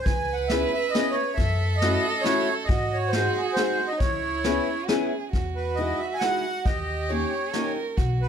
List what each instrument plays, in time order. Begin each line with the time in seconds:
0.02 upright bass C#2, violin B4, accordion G#5, kick, closed hi-hat
0.33 accordion F#5
0.48 steel-string acoustic guitar B3 C#4 E4 G#4, accordion E5, snare, closed hi-hat
0.74 accordion E5
0.90 steel-string acoustic guitar B3, accordion D#5
0.94 steel-string acoustic guitar C#4 E4 G#4, snare, closed hi-hat
1.11 accordion C#5
1.34 upright bass F#2, violin A4, accordion E5, kick, closed hi-hat
1.76 accordion D#5
1.82 steel-string acoustic guitar A3 C#4 E4 F#4, snare, closed hi-hat
2.21 steel-string acoustic guitar A3 C#4 E4, accordion C#5, snare, closed hi-hat
2.25 steel-string acoustic guitar F#4
2.65 accordion D#5
2.69 upright bass G#2, violin F#4, kick, closed hi-hat
2.93 accordion C#5
3.08 accordion C5
3.13 steel-string acoustic guitar G#3 C4 D#4 G#4, snare, closed hi-hat
3.38 accordion G#4
3.53 steel-string acoustic guitar G#3, accordion C5, snare, closed hi-hat
3.58 steel-string acoustic guitar C4 D#4 G#4
3.87 accordion D#5
3.92 violin D#4
3.98 upright bass C#2, violin E4, accordion C#5, kick, closed hi-hat
4.44 steel-string acoustic guitar B3 C#4 E4 G#4, snare, closed hi-hat
4.88 steel-string acoustic guitar B3 C#4 E4 G#4, violin G#4, snare, closed hi-hat
5.32 upright bass E2, violin F#4, kick, closed hi-hat
5.56 accordion B4
5.75 steel-string acoustic guitar G#3 D#4 E4 F#4, accordion D#5, closed hi-hat
5.98 accordion E5
6.14 accordion G#5
6.19 steel-string acoustic guitar G#3 D#4 E4 F#4, accordion F#5, snare, closed hi-hat
6.65 upright bass D#2, violin G4, accordion D#5, kick, closed hi-hat
7.09 steel-string acoustic guitar A#3 C#4 D#4 G4, accordion C#5, closed hi-hat
7.53 steel-string acoustic guitar A#3 C#4 D#4 G4, violin A#4, snare, closed hi-hat
7.97 upright bass B1, violin F#4, kick, closed hi-hat
8.21 accordion B4